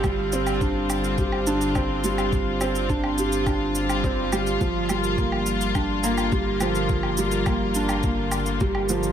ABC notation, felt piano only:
X:1
M:4/4
L:1/8
Q:1/4=105
K:Gm
V:1 name="Felt piano"
G, C D z G D C G, | z C D G D z C G, | F, G, B, z D B, G, F, | z G, B, D B, z G, F, |]